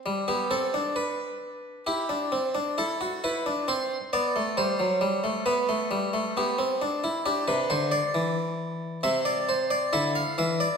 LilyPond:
<<
  \new Staff \with { instrumentName = "Harpsichord" } { \time 4/4 \key c \major \tempo 4 = 67 << { r16 g'16 a'8 b'4 g'4 a'8 b'8 | c''8 d''8 c''4 b'4 g'4 | g'16 b'16 c''16 d''4~ d''16 e''16 d''16 c''16 d''16 e''16 f''16 e''16 d''16 | } \\ { g16 b16 c'16 d'4~ d'16 e'16 d'16 c'16 d'16 e'16 fis'16 e'16 d'16 | c'8 b16 a16 g16 fis16 g16 a16 b16 a16 g16 a16 b16 c'16 d'16 e'16 | d'2 c'4 e'4 | } >> }
  \new Staff \with { instrumentName = "Harpsichord" } { \clef bass \time 4/4 \key c \major r1 | r1 | r16 c16 d8 e4 c4 d8 e8 | }
>>